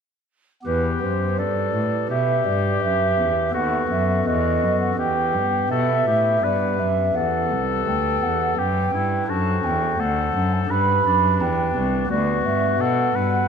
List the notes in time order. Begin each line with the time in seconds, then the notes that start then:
0.62 B3 G4 B4
0.66 E2 G4 B4
1.03 F#2 C5
1.39 G2 A4 D5
1.75 A2
2.10 B2 G4 E5
2.45 G2 D5
2.82 F#2 E5
3.18 E2
3.50 B3 A4 B4
3.54 D#2 F#4 F#5
3.90 F#2 E5
4.26 E2 F#4 D#5
4.62 F#2
4.80 F#5
4.94 B3 G4 B4
4.98 E2 G4 G5
5.34 G2
5.70 B2 A4 E5
6.06 A2 G4
6.38 B3 G4 B4
6.43 G2 B4 D5
6.79 F#2 E5
7.15 E2 A4 F#5
7.51 C2
7.87 D2 G5
8.22 E2 F#5
8.58 F#2 G4 G5
8.93 G2 E4
9.24 D4 A4 C5
9.29 F#2 F#4 A5
9.64 E2 G5
9.99 D2 A4 F#5
10.35 F#2
10.54 A5
10.65 D4 G4 B4
10.70 G2 B4 B5
11.05 F#2 D4
11.40 E2 G5
11.75 C2
12.06 B3 F#4 B4
12.10 D2 F#4 D5
12.45 G2 E5
12.80 B2 A4 F#5
13.15 G2 B4